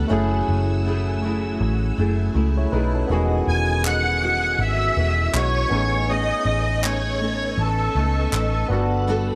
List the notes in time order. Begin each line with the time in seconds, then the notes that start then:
Already playing: A3 B3 D4 F#4 A4 F#5
0.08 F#1 F#3 A3 C#4 E4 G#4 G#5 E6
0.13 G#4
0.49 F#1
0.85 F#3 A3 E4 G#4
1.22 F#3 A3 E4 G#4
1.61 A1
1.96 F#1 F#3 A3 E4 G#4
2.33 C#2 F#3 A3 E4 G#4
2.57 E4 C#5
2.71 B1 F#3 A3 D#4 E4 G#4 B4
2.95 C#4 A4
3.07 E1 D#3 E3 G#3 B3 D#4 F#4 F#5 D#6
3.12 F#4 G#4
3.48 E1 G#5
3.83 E3 G#3 D#4 F#4 F#5, clap
4.21 E3 G#3 F#4
4.59 G#1 E5
4.96 E1 E3 G#3 F#4
5.33 B1 E3 G#3 D#4 F#4 C#5, clap
5.69 A1 A3 B3 C#4 D#4 B4 D#5 C#6
5.74 G#4 G#5
6.08 A3 C#4 D#4 G#4 D#5
6.45 A1
6.83 A3 C#4 D#4 G#4 C#5, clap
7.20 A3 C#4 D#4
7.58 A1 A4
7.95 C#2 A3 C#4 D#4
8.32 A1 A3 C#4 D#4, clap
8.68 G1 G3 B3 D4 F#4 F#5 A5 B5
8.73 A4
9.07 G3 B3 F#4 A4